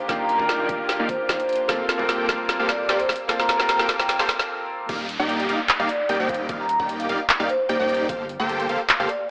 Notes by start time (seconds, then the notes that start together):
Already playing: D#3 A#3 D4 F4 G4 A#4 F5
0.08 D#1 A#3 D4 D#4 F4 G4 D5 F5, kick, snare, closed hi-hat
0.19 A#5
0.29 A#5, closed hi-hat
0.37 D#1 A#3 D4 D#4 F4 G4 D5 G5, kick
0.41 A#4
0.49 snare, closed hi-hat
0.59 F5
0.69 D#1 A#3 D#4 G4 D5 F5, kick, closed hi-hat
0.89 snare, closed hi-hat
0.99 D#1 A#3 D#4 G4 D5 F5
1.09 C5, kick, closed hi-hat
1.29 D#1 A#3 D#4 G4 D5 F5, kick, snare, closed hi-hat
1.40 closed hi-hat
1.49 C5, closed hi-hat
1.53 closed hi-hat
1.56 closed hi-hat
1.60 C5
1.68 G1 G3 A#3 C4 F4 G4 A4 C5 F5, kick, snare, closed hi-hat
1.89 snare, closed hi-hat
1.98 G1 A#3 C4 F4 G4 A4 C5 G5, kick
2.02 A#4
2.09 snare, closed hi-hat
2.29 G1 A#3 G4 A4 C5 F5, kick, snare, closed hi-hat
2.49 snare, closed hi-hat
2.59 G1 A#3 G4 A4 C5 F5
2.69 D5, snare, closed hi-hat
2.80 D5
2.89 G1 A#3 G4 A4 C5 D5, snare, closed hi-hat
3.00 C5, closed hi-hat
3.09 kick, snare, closed hi-hat
3.13 closed hi-hat
3.16 closed hi-hat
3.28 G1 A#3 C4 F4 G4 A4 C5 F5, kick, snare, closed hi-hat
3.40 A#5, snare
3.49 A#5, snare, closed hi-hat
3.57 G1 A#3 C4 F4 G4 A4 C5 G5, kick, snare
3.61 A#4
3.69 snare, closed hi-hat
3.79 snare
3.89 G1 A#3 G4 C5, kick, snare, closed hi-hat
3.99 G5, snare
4.09 G5, snare, closed hi-hat
4.19 G1 A#3 G4 A4 C5 F5, snare
4.29 kick, snare, closed hi-hat
4.39 snare
4.89 D#1 A#3 D#4 G4 D5 F5, kick, closed hi-hat, crash, downlifter
5.09 closed hi-hat
5.19 D#1 A#3 D#4 G4 D5 G5
5.29 closed hi-hat
5.40 closed hi-hat
5.49 D#1 A#3 D#4 G4 D5 F5, closed hi-hat
5.69 clap, closed hi-hat
5.79 D#1 A#3 D#4 G4 D5 F5
5.89 D5, closed hi-hat
6.00 D5
6.09 D#1 A#3 D#4 G4 D5 G5, closed hi-hat
6.20 D#1 A#3 D#4 G4 C5 D5 G5
6.29 F5, kick, closed hi-hat
6.34 closed hi-hat
6.49 D#1 A#3 D#4 G4 D5 F5, kick, closed hi-hat
6.60 A#5
6.69 A#5, closed hi-hat
6.79 D#1 A#3 D#4 G4 D5 G5, kick
6.89 closed hi-hat
7.00 F5, closed hi-hat
7.09 D#1 A#3 D#4 G4 D5 F5, closed hi-hat
7.29 clap, closed hi-hat
7.40 D#1 A#3 D#4 G4 D5 F5
7.49 C5, closed hi-hat
7.69 D#1 A#3 D#4 G4 C5 D5 G5, closed hi-hat
7.80 D#1 A#3 D#4 G4 D5 G5
7.89 C5, closed hi-hat
7.94 closed hi-hat
8.00 C5
8.09 G1 A#3 G4 C5 F5, kick, closed hi-hat
8.29 closed hi-hat
8.40 G1 A#3 G4 A4 C5 G5
8.49 closed hi-hat
8.60 closed hi-hat
8.69 G1 A#3 G4 A4 C5 F5, closed hi-hat
8.89 clap, closed hi-hat
9.00 G1 A#3 G4 A4 C5 F5
9.09 D5, closed hi-hat
9.20 D5